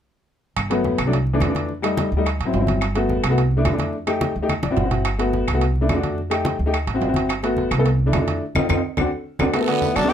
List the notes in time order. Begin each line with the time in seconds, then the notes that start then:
0.57 G1, high conga, high timbale, claves
0.70 F#3 A3 B3, high conga, high timbale
0.84 high conga, low timbale
0.98 C2, high timbale, claves
1.06 F#3 A3 D4
1.13 high conga, high timbale
1.27 high conga
1.33 E3 A3 D4
1.40 F2, high conga, high timbale, low timbale, claves
1.47 E3 A3 D4
1.55 high conga, high timbale
1.69 high conga
1.82 G3 A3 D#4, high conga, high timbale, claves
1.97 high conga, high timbale, low timbale
2.12 D2
2.17 G3 A3 D#4
2.26 high conga, high timbale, claves
2.39 A1, high conga, high timbale
2.45 F#3 C4 E4
2.53 G1, high conga, low timbale
2.60 F#3 C4 E4
2.67 high conga, high timbale
2.81 high conga, high timbale, claves
2.95 A3 B3 F#4, high conga, high timbale
3.09 high conga, low timbale
3.24 C2, high timbale, claves
3.30 A3 B3 F#4
3.37 high conga, high timbale
3.51 high conga
3.57 A3 D4 E4
3.65 F2, high conga, high timbale, low timbale, claves
3.72 A3 D4 E4
3.79 high conga, high timbale
3.93 high conga
4.07 A3 D#4 G4, high conga, high timbale, claves
4.21 high conga, high timbale, low timbale
4.36 D2
4.42 A3 D#4 G4
4.49 high conga, high timbale, claves
4.63 A1 D5, high conga, high timbale
4.71 C4 E4 F#4
4.77 G1 F#5, low conga, low timbale
4.84 C4 E4 F#4
4.91 low conga, high timbale
5.05 high conga, high timbale, claves
5.19 A3 B3 F#4, high conga, high timbale
5.33 high conga, low timbale
5.48 C2, high timbale, claves
5.53 A3 B3 F#4
5.61 high conga, high timbale
5.76 high conga
5.81 A3 D4 E4
5.89 F2, high conga, high timbale, low timbale, claves
5.94 A3 D4 F#4
6.03 high conga, high timbale
6.18 high conga
6.30 A3 D#4 G4, high conga, high timbale, claves
6.45 high conga, high timbale, low timbale
6.59 D2
6.66 A3 D#4 G4
6.73 high conga, high timbale, claves
6.87 A1, high conga, high timbale
6.94 C4 E4 F#4
7.01 G1, high conga, low timbale
7.08 C4 E4 F#4
7.14 high conga, high timbale
7.29 high conga, high timbale, claves
7.43 A3 B3 F#4, high conga, high timbale
7.57 high conga, low timbale
7.71 C2, high timbale, claves
7.78 A3 B3 A4
7.85 high conga, high timbale
7.99 high conga
8.06 A3 D4 E4
8.13 F2, high conga, high timbale, low timbale, claves
8.20 A3 D4 E4
8.28 high conga, high timbale
8.55 F2 C4 D#4 F4, high conga, high timbale, claves
8.69 F2 C4 D#4 F4, high conga, high timbale, claves
8.97 D2 C4 D4 F#4, high conga, high timbale, claves
9.39 D2 C4 D4 F#4, high conga, high timbale, claves
9.53 A3 B3 F#4, high conga, high timbale, long guiro, claves
9.60 A3 B3 A4
9.67 D3 A3 B3 F#4, high conga, high timbale
9.81 A3 B3 E4, high conga, low timbale, short guiro
9.95 D2 F#3 D4, high timbale, short guiro, claves
10.04 A3 B3 D4
10.09 B3 G4, high timbale